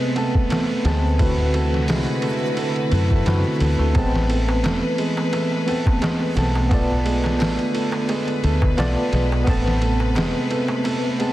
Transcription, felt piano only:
Already playing: G#3 A3
0.16 A3
0.50 A3
0.85 G#3
1.19 A3
1.54 A3
1.88 G#3
2.22 A3
2.57 A3
2.91 A3
3.10 A3
3.26 A3
3.61 A3
3.79 A3
3.95 G#3
4.29 A3
4.64 A3
4.98 G#3
5.33 A3
5.67 A3
6.01 G#3
6.36 A3
6.71 A3
7.05 G#3
7.40 A3
7.74 A3
8.09 G#3
8.43 A3
8.78 A3
9.12 G#3
9.47 A3
9.81 A3
10.16 G#3
10.51 A3
10.85 A3
11.20 G#3

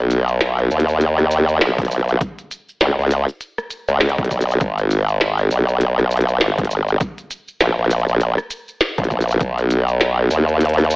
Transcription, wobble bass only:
Already playing: B1
0.71 D#2
1.61 B1
2.81 C#2
2.99 C#2
3.88 C#2
4.18 B1
4.61 G#1
5.51 B1
6.41 G#1
7.61 A#1
7.78 A#1
8.08 A#1
8.98 A#1
9.41 B1
10.30 D#2

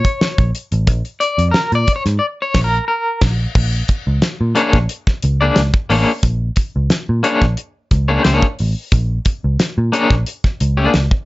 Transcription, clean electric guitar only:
Already playing: C#5
1.20 D5
1.51 A#4
1.75 D5
1.96 C#5
2.19 D5
2.42 C#5
2.64 A#4
2.88 A#4
4.55 A#3 D4 G#4 C#5
5.41 A#3 D4 G#4 D5
5.90 A#3 D4 G#4 C#5
7.23 A#3 D4 G#4 C#5
8.08 A#3 D4 G#4 C#5
8.24 A#3 D4 G#4 C#5
9.92 A#3 D4 G#4 C#5
10.77 A#3 D4 G#4 D5

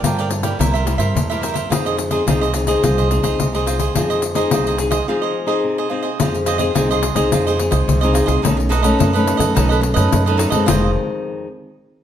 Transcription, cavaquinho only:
0.04 F4 A#4 D5 G5
0.18 A#4 D5 G5
0.30 muted cavaquinho stroke
0.43 A#4 D5 G5
0.59 E4 A#4 C5 E5
0.74 A#4 C5 E5
0.98 A#4 C5 E5
1.30 A#4 C5 E5
1.41 E4 A#4 C5 E5
1.54 A#4 C5 E5
1.70 F4 G#4 C5 D#5
1.86 G#4 C5 D#5
1.97 muted cavaquinho stroke
2.11 G#4 C5 D#5
2.27 F4 G#4 C5 D#5
2.41 G#4 C5 D#5
2.54 muted cavaquinho stroke
2.68 G#4 C5 D#5
2.84 F4 G#4 C5 D#5
2.98 G#4 C5 D#5
3.23 G#4 C5 D#5
3.55 G#4 C5 D#5
3.66 F4 G#4 C5 D#5
3.79 G#4 C5 D#5
3.96 F4 G#4 C5 D#5
4.10 G#4 C5 D#5
4.23 muted cavaquinho stroke
4.36 G#4 C5 D#5
4.52 F4 G#4 C5 D#5
4.67 G#4 C5 D#5
4.79 muted cavaquinho stroke
4.91 G#4 C5 D#5
5.08 F4 G#4 C5 D#5
5.22 G#4 C5 D#5
5.47 G#4 C5 D#5
5.78 G#4 C5 D#5
5.89 F4 G#4 C5 D#5
6.02 G#4 C5 D#5
6.20 F4 G#4 C5 D#5
6.35 muted cavaquinho stroke
6.46 F4 G#4 C5 D#5
6.58 G#4 C5 D#5
6.75 F4 G#4 C5 D#5
6.91 G#4 C5 D#5
7.16 G#4 C5 D#5
7.33 F4 G#4 C5 D#5
7.47 G#4 C5 D#5
7.59 muted cavaquinho stroke
7.71 G#4 C5 D#5
8.01 G#4 C5 D#5
8.14 F4 G#4 C5 D#5
8.26 G#4 C5 D#5
8.42 D#4 A4 B4 D#5
8.57 muted cavaquinho stroke
8.69 D#4 A4 B4 D#5
8.82 A4 B4 D#5
8.98 D#4 A4 B4 D#5
9.13 A4 B4 D#5
9.37 A4 B4 D#5
9.55 D#4 A4 B4 D#5
9.69 A4 B4 D#5
9.81 muted cavaquinho stroke
9.94 A4 B4 D#5
10.26 A4 B4 D#5
10.37 D#4 A4 B4 D#5
10.50 A4 B4 D#5
10.66 F4 G#4 C5 D#5

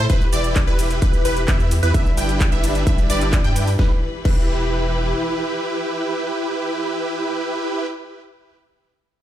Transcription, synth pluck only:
0.10 B4
0.33 D5
0.67 B4
1.02 B4
1.25 B4
1.48 E5
1.83 B4
1.94 E5
2.17 G5
2.52 E5
2.87 E5
3.10 D5
3.44 G5
3.79 B4
4.25 B4

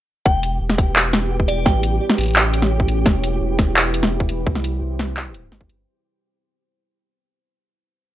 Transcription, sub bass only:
0.26 E1
0.61 E1
1.66 A1
2.18 A1
3.06 E1
3.41 E1
4.47 C2
4.82 C2
5.52 G1

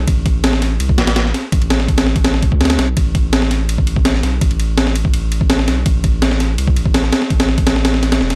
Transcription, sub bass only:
0.08 A1
0.80 C2
0.98 A1
1.52 A1
2.52 D2
2.79 B1
2.97 A1
4.23 B1
4.41 A1
5.14 A1
5.68 B1
5.86 A1
6.58 C2
6.76 A1
7.31 A1
8.21 E1

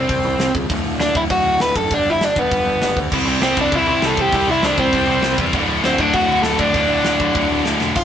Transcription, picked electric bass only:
0.09 C2
0.25 C2
0.39 C2
0.54 C#2
0.70 D1
0.84 D1
0.99 D1
1.15 D1
1.30 D1
1.45 D1
1.60 D1
1.75 F#1
1.91 G1
2.05 G1
2.21 G1
2.36 G1
2.51 G1
2.66 G1
2.81 G1
2.96 D2
3.12 C2
3.25 C2
3.41 C2
3.57 C2
3.72 C2
3.87 C2
4.03 C2
4.17 C2
4.32 C2
4.47 C2
4.62 C2
4.78 C2
4.93 C2
5.07 C2
5.22 C2
5.38 E2
5.53 D1
5.67 D1
5.83 D1
5.98 D1
6.14 D1
6.29 D1
6.44 D1
6.58 D1
6.74 D1
6.88 D1
7.03 D1
7.20 D1
7.35 D1
7.50 D1
7.65 D1
7.80 E1
7.95 F1

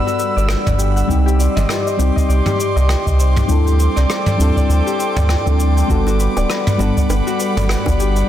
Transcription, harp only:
Already playing: B4 D5 F#5
0.06 F#4
0.19 B4
0.36 D5
0.49 F#5
0.66 D5
0.78 G4
0.96 F#5
1.09 G4
1.26 G4
1.39 D5
1.56 D#5
1.69 D5
1.86 D#5
1.99 G4
2.16 D#5
2.29 D5
2.46 G4
2.59 D5
2.76 D#5
2.88 G5
3.06 D#5
3.19 C5
3.36 G5
3.49 G4
3.66 G4
3.79 C5
3.96 D5
4.09 C5
4.26 D5
4.39 G4
4.56 D5
4.69 C5
4.86 G4
4.99 C5
5.16 D5
5.29 G5
5.46 D5
5.59 A4
5.77 G5
5.89 F#4
6.07 F#4
6.19 B4
6.37 D5
6.50 B4
6.67 D5
6.79 F#4
6.97 D5
7.09 B4
7.27 F#4
7.39 B4
7.57 D5
7.69 F#5
7.87 D5
8.00 G4
8.17 F#5

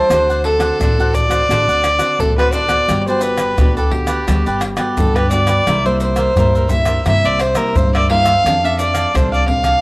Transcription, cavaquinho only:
0.11 D4 C5 D5 F#5
0.30 C5 D5 F#5
0.61 C5 D5 F#5
0.81 D4 C5 D5 F#5
1.00 C5 D5 F#5
1.14 muted cavaquinho stroke
1.30 C5 D5 F#5
1.51 D4 C5 D5 F#5
1.69 C5 D5 F#5
1.83 muted cavaquinho stroke
1.99 C5 D5 F#5
2.38 C5 D5 F#5
2.53 D4 C5 D5 F#5
2.69 C5 D5 F#5
2.89 F#4 G4 B4 D5
3.08 G4 B4 D5
3.38 G4 B4 D5
3.58 F#4 G4 B4 D5
3.77 G4 B4 D5
3.92 muted cavaquinho stroke
4.07 G4 B4 D5
4.27 F#4 G4 B4 D5
4.46 G4 B4 D5
4.62 muted cavaquinho stroke
4.77 G4 B4 D5
5.16 G4 B4 D5
5.30 F#4 G4 B4 D5
5.47 G4 B4 D5
5.68 E4 A#4 C5 E5
5.86 A#4 C5 E5
6.16 A#4 C5 E5
6.38 E4 A#4 C5 E5
6.55 A#4 C5 E5
6.70 muted cavaquinho stroke
6.86 A#4 C5 E5
7.06 E4 A#4 C5 E5
7.24 A#4 C5 E5
7.39 muted cavaquinho stroke
7.55 A#4 C5 E5
7.95 A#4 C5 E5
8.10 E4 A#4 C5 E5
8.24 A#4 C5 E5
8.46 D4 A4 D5 F5
8.64 A4 D5 F5
8.94 A4 D5 F5
9.15 D4 A4 D5 F5
9.32 A4 D5 F5
9.48 muted cavaquinho stroke
9.63 A4 D5 F5

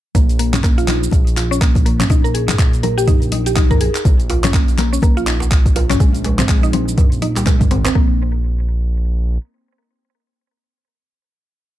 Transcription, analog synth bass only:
0.15 A#1
1.12 A#1
2.10 A#1
2.59 A#1
4.05 A#1
5.03 A#1
6.00 A#1
6.49 A#1
7.47 A#1
7.71 G#1
7.95 A#1

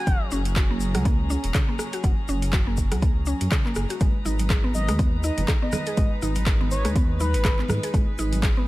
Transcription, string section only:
Already playing: F#3 C#4 G#4 A#5
4.01 G#3 D#4 B4 A#5
7.94 G#4

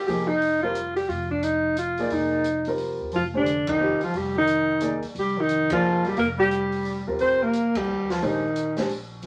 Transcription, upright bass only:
0.08 F1
1.09 F1
2.11 F1
3.01 D#2
3.13 F1
4.01 muted upright bass stroke
4.13 F1
5.03 muted upright bass stroke
5.15 F1
6.17 F1
7.07 D#2
7.20 F1
7.88 D#2
8.22 A#1

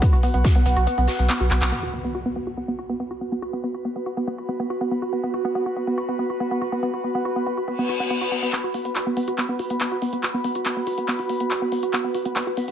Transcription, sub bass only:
0.13 B1
0.34 B1
0.55 B1
0.66 B1
0.77 B1
0.98 B1
1.19 B1
1.40 B1
1.51 B1
1.62 B1

